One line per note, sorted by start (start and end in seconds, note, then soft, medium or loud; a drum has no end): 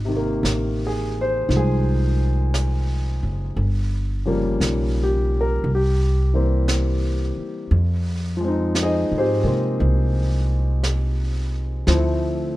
0.00 0.41 G#1 medium
0.05 3.54 C3 soft
0.05 1.47 D#3 soft
0.17 3.60 A#3 medium
0.43 1.45 A1 medium
0.43 brush sweep soft
0.43 snare soft
0.43 hi-hat pedal soft
0.87 1.17 G#4 medium
1.21 1.52 C5 medium
1.48 3.19 C2 medium
1.48 3.57 D#3 soft
1.48 3.58 F3 soft
1.48 3.59 G#3 soft
1.48 brush sweep soft
1.48 snare soft
1.57 2.53 G#4 medium
2.54 brush sweep soft
2.54 snare soft
2.54 hi-hat pedal soft
3.23 3.55 F#1 medium
3.56 4.57 G1 medium
3.56 brush sweep soft
4.25 5.64 C#3 soft
4.25 5.65 F3 soft
4.25 5.65 G3 soft
4.25 5.65 A#3 soft
4.60 5.61 B1 medium
4.60 brush sweep soft
4.60 snare soft
4.60 hi-hat pedal soft
5.03 5.33 G4 medium
5.41 5.69 A#4 medium
5.64 7.33 C2 medium
5.64 brush sweep soft
5.75 6.69 G4 medium
6.34 7.72 E3 soft
6.34 7.72 G3 soft
6.34 7.72 A#3 soft
6.34 7.73 C4 soft
6.68 brush sweep soft
6.68 snare soft
6.68 hi-hat pedal soft
7.37 muted upright bass stroke soft
7.71 9.06 F2 medium
7.71 brush sweep soft
8.37 11.85 F3 soft
8.37 9.42 G#3 soft
8.44 9.18 C4 soft
8.44 8.82 D#4 medium
8.75 brush sweep soft
8.75 snare soft
8.75 hi-hat pedal soft
8.83 9.13 D#4 soft
8.83 9.13 G#4 soft
8.83 9.13 C5 soft
8.83 9.13 D#5 medium
9.12 9.43 G#2 medium
9.18 9.45 C4 soft
9.18 10.72 G4 soft
9.18 10.72 G#4 soft
9.18 10.72 C5 medium
9.43 9.76 C3 medium
9.43 11.86 G#3 soft
9.43 11.87 A#3 soft
9.43 11.87 C4 soft
9.80 11.83 C2 medium
9.80 brush sweep soft
10.83 brush sweep soft
10.83 snare soft
10.83 hi-hat pedal soft
11.87 12.57 D2 medium
11.87 12.57 F3 soft
11.87 12.57 A3 soft
11.87 12.57 C4 soft
11.87 12.57 E4 medium
11.87 brush sweep soft
11.87 snare soft